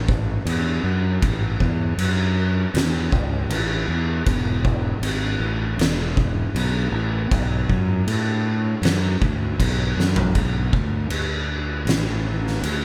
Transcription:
0.00 0.35 A1 medium
0.09 kick loud
0.45 0.79 E2 medium
0.45 crash medium
0.84 1.17 F#2 medium
1.22 1.56 A1 medium
1.22 kick loud
1.22 crash medium
1.60 1.93 E2 loud
1.60 kick medium
1.98 2.64 F#2 medium
1.98 crash medium
2.74 3.07 E2 loud
2.74 snare loud
2.74 crash medium
3.12 3.46 C#2 loud
3.12 kick loud
3.49 3.83 A1 medium
3.49 crash medium
3.88 4.21 E2 medium
4.26 4.93 E1 medium
4.26 kick loud
4.26 crash medium
4.65 kick loud
5.02 5.35 G#1 medium
5.02 crash medium
5.40 5.73 A1 loud
5.77 6.44 E1 loud
5.77 crash medium
5.81 snare loud
6.17 kick loud
6.55 6.88 B1 loud
6.55 crash medium
6.92 7.25 A1 loud
7.31 7.64 B1 loud
7.31 kick loud
7.31 crash medium
7.69 8.02 F#2 loud
7.69 kick medium
8.07 8.73 A2 loud
8.07 crash medium
8.82 9.15 F#2 loud
8.82 snare loud
8.82 crash medium
9.21 9.54 D2 loud
9.21 kick loud
9.59 9.92 B1 loud
9.59 kick medium
9.59 crash medium
9.97 10.30 F#2 medium
9.97 snare medium
10.16 floor tom loud
10.35 10.72 B1 medium
10.35 kick loud
10.35 crash medium
10.73 11.09 D2 loud
10.73 kick medium
11.10 11.84 D2 medium
11.10 crash medium
11.85 12.59 A1 medium
11.85 snare loud
11.85 crash medium
12.47 snare soft
12.62 12.85 D2 loud
12.62 crash medium

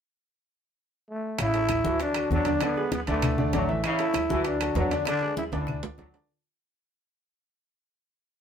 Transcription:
1.10 1.38 A3 medium
1.38 1.82 A1 medium
1.38 1.63 C#3 medium
1.38 1.98 E4 loud
1.38 high bongo medium
1.38 high conga soft
1.38 high timbale medium
1.38 claves medium
1.54 1.79 A3 medium
1.54 1.80 A4 medium
1.54 1.80 C#5 medium
1.54 high bongo soft
1.54 high conga soft
1.54 high timbale medium
1.69 high bongo medium
1.69 high conga medium
1.69 high timbale medium
1.69 claves medium
1.85 2.28 D2 medium
1.85 2.09 E3 medium
1.85 2.10 F#3 medium
1.85 2.10 F#4 medium
1.85 2.10 A4 medium
1.85 high bongo soft
1.85 high conga loud
2.00 2.30 D4 medium
2.00 high bongo medium
2.00 high conga soft
2.00 high timbale medium
2.14 2.40 F#3 medium
2.14 2.41 F#4 medium
2.14 2.41 A4 medium
2.14 high conga soft
2.14 high timbale medium
2.14 claves medium
2.30 2.58 E2 medium
2.30 2.47 F#3 medium
2.30 2.66 D4 loud
2.30 high bongo soft
2.30 low bongo medium
2.30 high conga medium
2.45 2.59 D3 medium
2.45 2.59 D4 medium
2.45 2.59 D5 medium
2.45 high bongo soft
2.45 high conga medium
2.45 high timbale medium
2.60 2.85 D3 medium
2.60 2.74 D3 medium
2.60 2.74 D4 medium
2.60 2.74 D5 medium
2.60 high bongo medium
2.60 high conga soft
2.60 high timbale medium
2.60 claves medium
2.65 2.94 B3 medium
2.76 3.02 G#3 medium
2.76 3.02 G#4 medium
2.76 3.02 B4 medium
2.76 high bongo soft
2.76 high conga soft
2.92 3.01 B3 medium
2.92 high bongo medium
2.92 high conga medium
2.92 high timbale medium
3.07 3.50 D2 loud
3.07 3.33 D3 medium
3.07 3.32 E3 medium
3.07 3.51 A3 medium
3.07 3.33 D4 medium
3.07 3.33 D5 medium
3.07 high bongo soft
3.07 high timbale medium
3.22 high bongo medium
3.22 high conga soft
3.22 low conga medium
3.22 high timbale medium
3.22 claves medium
3.38 3.50 D3 medium
3.38 3.51 D4 medium
3.38 3.51 D5 medium
3.38 high conga soft
3.38 low conga medium
3.53 3.81 A1 medium
3.53 3.66 D3 medium
3.53 3.70 F#3 medium
3.53 3.83 A3 medium
3.53 3.66 D4 medium
3.53 3.66 D5 medium
3.53 high bongo soft
3.53 low bongo medium
3.53 high conga medium
3.53 high timbale medium
3.68 3.94 E3 medium
3.68 3.94 E4 medium
3.68 3.94 E5 medium
3.68 high bongo soft
3.68 high conga soft
3.84 4.09 C#3 medium
3.84 4.42 E4 loud
3.84 high bongo medium
3.84 high conga soft
3.84 high timbale medium
3.84 claves medium
3.99 4.25 A3 medium
3.99 4.25 A4 medium
3.99 4.25 C#5 medium
3.99 high bongo soft
3.99 high conga soft
3.99 high timbale medium
4.14 high bongo medium
4.14 high conga medium
4.14 high timbale medium
4.14 claves medium
4.29 4.73 D2 medium
4.29 4.55 E3 medium
4.29 4.55 F#3 medium
4.29 4.55 F#4 medium
4.29 4.55 A4 medium
4.29 high bongo soft
4.29 high conga medium
4.44 4.75 D4 medium
4.44 high bongo medium
4.44 high conga soft
4.44 high timbale medium
4.60 4.86 F#3 medium
4.60 4.86 F#4 medium
4.60 4.86 A4 medium
4.60 high conga soft
4.60 high timbale medium
4.60 claves medium
4.75 5.03 E2 medium
4.75 4.93 F#3 medium
4.75 5.05 D4 medium
4.75 high bongo soft
4.75 low bongo medium
4.75 high conga medium
4.75 low timbale medium
4.91 5.04 D3 medium
4.91 5.04 D4 medium
4.91 5.04 D5 medium
4.91 high bongo soft
4.91 high timbale medium
5.05 5.19 D3 medium
5.05 5.32 D3 medium
5.05 5.20 D4 medium
5.05 5.36 D4 loud
5.05 5.20 D5 medium
5.05 high bongo medium
5.05 high conga soft
5.05 high timbale medium
5.05 claves medium
5.21 5.47 G#3 medium
5.21 5.47 G#4 medium
5.21 5.47 B4 medium
5.21 high bongo soft
5.21 high conga soft
5.37 5.45 E4 medium
5.37 high bongo medium
5.37 high conga medium
5.37 high timbale medium
5.52 5.81 D2 loud
5.52 5.78 D3 medium
5.52 5.78 E3 medium
5.52 5.78 D4 medium
5.52 6.11 D4 medium
5.52 5.78 D5 medium
5.52 high bongo soft
5.52 high timbale loud
5.67 high bongo medium
5.67 high conga soft
5.67 low conga medium
5.67 claves medium
5.83 5.98 C#2 medium
5.83 5.96 D3 medium
5.83 5.96 D4 medium
5.83 5.96 D5 medium
5.83 low timbale medium
5.98 6.26 D2 medium
5.98 6.11 D3 medium
5.98 6.16 F#3 medium
5.98 6.11 D4 medium
5.98 6.12 D5 medium
5.98 high bongo soft
5.98 low bongo medium
5.98 high conga medium
5.98 low timbale medium
6.14 6.27 D3 medium
6.14 6.27 D4 medium
6.14 6.27 D5 medium
6.14 high bongo soft
6.14 high conga soft
6.14 low timbale medium

